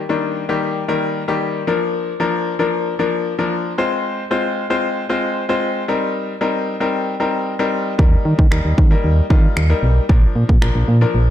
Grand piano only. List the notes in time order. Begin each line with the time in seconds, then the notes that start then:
0.09 D#3 G3 A#3 D4
0.49 D#3 G3 A#3 G4
0.88 D#3 G3 A#3 A#4
1.28 D#3 G3 A#3 G4
1.67 F3 A#3 D4 A#4
2.20 F3 A#3 D4 A#4
2.59 F3 A#3 D4 A#4
2.99 F3 A#3 D4 A#4
3.39 F3 A#3 D4 A#4
3.78 G#3 C4 F4 C5
4.31 G#3 C4 F4 C5
4.70 G#3 C4 F4 C5
5.09 G#3 C4 F4 C5
5.49 G#3 C4 F4 C5
5.88 G3 C4 D#4 A#4
6.41 G3 C4 D#4 A#4
6.80 G3 C4 D#4 A#4
7.20 G3 C4 D#4 A#4
7.59 G3 C4 D#4 A#4
7.98 G3 A#3 D#4 A#4
8.51 G3 A#3 D#4 A#4
8.91 G3 A#3 D#4 A#4
9.30 G3 A#3 D#4 F4
9.70 G3 A#3 D#4 A#4
10.09 F3 A#3 D4 A#4
10.62 F3 A#3 D4 A#4
11.01 F3 A#3 D4 A#4